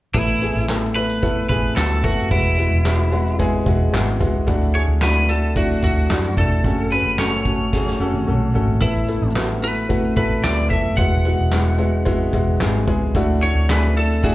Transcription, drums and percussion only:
0.14 kick, closed hi-hat
0.42 closed hi-hat
0.68 snare, clap, closed hi-hat
0.96 closed hi-hat
1.09 closed hi-hat
1.23 kick, closed hi-hat
1.50 kick, closed hi-hat
1.77 snare, clap, closed hi-hat
2.04 kick, closed hi-hat
2.31 kick, closed hi-hat
2.45 closed hi-hat
2.59 closed hi-hat
2.85 snare, clap, closed hi-hat
3.12 closed hi-hat
3.27 closed hi-hat
3.40 kick, closed hi-hat
3.66 kick, closed hi-hat
3.94 snare, clap, closed hi-hat
4.21 kick, closed hi-hat
4.48 kick, closed hi-hat
4.61 closed hi-hat
4.75 closed hi-hat
5.01 snare, clap, closed hi-hat
5.28 closed hi-hat
5.56 kick, closed hi-hat
5.83 kick, closed hi-hat
6.10 snare, clap, closed hi-hat
6.37 kick, closed hi-hat
6.64 kick, closed hi-hat
6.91 closed hi-hat
7.18 snare, clap, closed hi-hat
7.45 kick, closed hi-hat
7.73 kick, snare
7.87 snare
8.14 high tom
8.27 mid tom
8.54 floor tom
8.67 floor tom
8.81 kick, closed hi-hat
8.95 closed hi-hat
9.08 closed hi-hat
9.35 snare, clap, closed hi-hat
9.63 closed hi-hat
9.90 kick, closed hi-hat
10.17 kick, closed hi-hat
10.44 snare, clap, closed hi-hat
10.71 kick, closed hi-hat
10.98 kick, closed hi-hat
11.25 closed hi-hat
11.51 snare, clap, closed hi-hat
11.79 closed hi-hat
12.06 kick, closed hi-hat
12.33 kick, closed hi-hat
12.60 snare, clap, closed hi-hat
12.88 kick, closed hi-hat
13.15 kick, closed hi-hat
13.42 closed hi-hat
13.69 snare, clap, closed hi-hat
13.96 closed hi-hat
14.10 closed hi-hat
14.24 kick, closed hi-hat

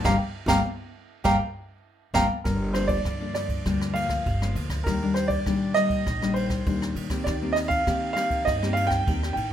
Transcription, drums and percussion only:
0.05 kick, snare
0.48 kick, snare
1.25 kick, snare
2.14 kick, snare
2.45 kick, cross-stick, ride
2.74 cross-stick, ride
2.89 kick, ride
3.05 kick, cross-stick, ride
3.35 cross-stick, ride
3.49 kick, ride
3.66 kick, cross-stick, ride
3.81 cross-stick
3.95 ride
4.09 kick, cross-stick, ride
4.26 kick, ride
4.42 cross-stick
4.56 ride
4.70 kick, cross-stick, ride
4.86 kick, cross-stick, ride
5.16 cross-stick, ride
5.30 kick, ride
5.46 kick, cross-stick, ride
5.75 cross-stick, ride
5.90 kick, ride
6.07 kick, cross-stick, ride
6.22 cross-stick
6.36 ride
6.50 kick, cross-stick, ride
6.66 kick, ride
6.82 cross-stick
6.96 ride
7.10 kick, cross-stick, ride
7.26 kick, cross-stick, ride
7.56 cross-stick, ride
7.70 kick, ride
7.87 kick, cross-stick, ride
8.17 cross-stick, ride
8.31 kick, ride
8.47 kick, cross-stick, ride
8.63 cross-stick
8.76 ride
8.90 kick, cross-stick, ride
9.07 kick, ride
9.23 cross-stick
9.37 ride

